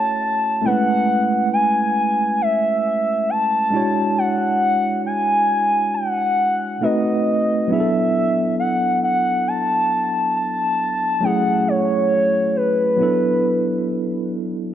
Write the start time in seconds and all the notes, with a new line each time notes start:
Already playing: A3 C#4 E4 F#4 A4 A5
0.62 A3 C4 E4 F#5
0.66 G#3 C#4 B4
1.53 G#5
2.42 E5
3.30 A5
3.70 G#3 D4 E4
3.75 F#4 C#5
4.18 F#5
5.06 G#5
5.95 F#5
6.81 A3 C4 D#4 F#4 B4 D#5
7.68 F#3 B3 D4 E5
7.72 E4 G#4
7.80 A4
8.60 F#5
9.04 F#5
9.48 A5
10.36 A5
11.21 F#3 A3 C#4 F#5
11.25 E4 G#4
11.68 C#5
12.56 B4
12.97 F#3 B3 D4
13.01 E4 A4